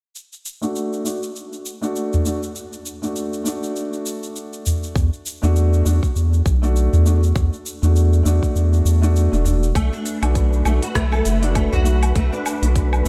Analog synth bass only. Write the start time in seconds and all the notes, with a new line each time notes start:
4.96 E2
5.43 E2
5.86 E2
6.16 E2
6.46 B1
6.93 E2
7.36 E2
7.83 E2
8.26 E2
8.56 E2
8.85 E2
9.33 E1
9.75 B1
10.23 B1
10.66 B1
10.95 B1
11.26 F#1
11.73 B1
12.16 B1
12.63 B1